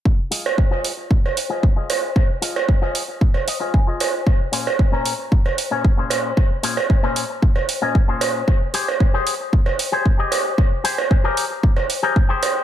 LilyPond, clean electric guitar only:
\new Staff \with { instrumentName = "Clean electric guitar" } { \time 4/4 \key f \minor \tempo 4 = 114 << { r1 | r2 r8 ees''8 aes''4 | r1 | r1 |
r1 | r1 | } \\ { r8 <f' aes' ees''>16 r8 <f' aes' ees''>16 r4 r16 <f' aes' ees''>16 r16 <f' aes' ees''>8. | r8 <f' aes' ees''>16 r8 <f' aes' ees''>16 r4 r16 <f' aes' ees''>16 r16 <f' aes' ees''>8. | r8 <bes, des' aes' c''>16 r8 <bes, des' aes' bes'>16 r4 r16 <bes, des' aes' des''>16 r16 <bes, des' aes' c''>8. | r8 <bes, des' aes' c''>16 r8 <bes, des' aes' c''>16 r4 r16 <bes, des' aes' ees''>16 r16 <bes, des' aes' c''>8. |
r8 <g' aes' c''>16 r8 <g' aes' c''>16 r4 r16 <g' aes' c''>16 r16 <g' aes' ees''>8. | r8 <g' aes' c''>16 r8 <g' aes' bes'>16 r4 r16 <g' aes' bes'>16 r16 <g' aes' c''>8. | } >> }